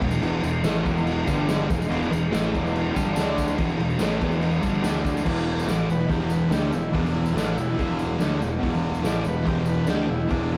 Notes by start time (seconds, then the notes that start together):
0.00 E1 E2 B2, kick, crash
0.11 tambourine
0.20 E1 E2 B2 E3, tambourine, crash
0.43 E1 E2 B2, tambourine, crash
0.63 A1 A2 E3 A3, snare, tambourine, crash
0.76 tambourine
0.83 E1 E2 B2 E3, kick, tambourine, crash
0.97 tambourine
1.07 tambourine, crash
1.26 G1 G2 D3 G3, kick, tambourine, crash
1.49 snare, tambourine, crash
1.70 E1 E2 B2, kick, tambourine, crash
1.82 tambourine
1.89 E1 E2 B2 E3, crash
2.03 tambourine
2.11 E1 E2 B2, tambourine, crash
2.31 A1 A2 E3 A3, snare, tambourine, crash
2.53 E1 E2 B2 E3, kick, tambourine, crash
2.67 tambourine
2.75 tambourine, crash
2.93 G1 G2 D3 G3, kick, tambourine
2.97 crash
3.13 D2 D3 A3 D4, tambourine
3.17 snare, crash
3.38 kick, tambourine, crash
3.48 tambourine
3.56 E1 E2 B2 E3, kick, tambourine, crash
3.69 tambourine
3.77 E1 E2 B2, crash
3.90 tambourine
3.98 A1 A2 E3 A3, snare, tambourine, crash
4.20 E1 E2 B2 E3, kick, tambourine, crash
4.32 tambourine
4.41 tambourine, crash
4.51 tambourine
4.61 G1 G2 D3 G3, kick, tambourine, crash
4.74 tambourine
4.82 D2 D3 A3 D4, snare, tambourine, crash
5.05 kick, tambourine, crash
5.17 tambourine
5.23 E1 E2 B2 E3, kick, crash
5.39 tambourine
5.57 snare, tambourine
5.66 A1 A2 E3 A3 D5, snare, open hi-hat, tambourine
5.87 E1 E2 B2 B4, tambourine
5.99 snare
6.08 E1 E2 B2 E3 G4, kick, open hi-hat, tambourine
6.30 B4, tambourine
6.50 D2 D3 A3 D4 G4, snare, open hi-hat, tambourine
6.71 E1 E2 B2 E4, tambourine
6.92 E1 E2 B2 E3 D4, kick, open hi-hat
7.06 tambourine
7.15 E4
7.26 tambourine
7.34 A1 A2 E3 A3 D4, snare, open hi-hat, tambourine
7.48 tambourine
7.57 E1 E2 B2 E4, tambourine
7.68 snare
7.78 E1 E2 B2 E3, kick, open hi-hat, tambourine
7.99 tambourine
8.19 D2 D3 A3 D4, snare, open hi-hat, tambourine
8.41 E1 E2 B2, tambourine
8.59 E1 E2 B2 E3
8.63 kick, open hi-hat
8.74 tambourine
8.95 tambourine
9.01 A1 A2 E3 A3, snare, open hi-hat, tambourine
9.06 D5
9.16 tambourine
9.24 E1 E2 B2 B4, tambourine
9.36 snare
9.44 E1 E2 B2 E3, kick, open hi-hat, tambourine
9.48 G4
9.66 B4, tambourine
9.86 D2 D3 A3 D4, snare, open hi-hat, tambourine
9.90 G4
10.08 E1 E2 B2 E4
10.29 E1 E2 B2 E3 D4, kick, open hi-hat, tambourine
10.53 E4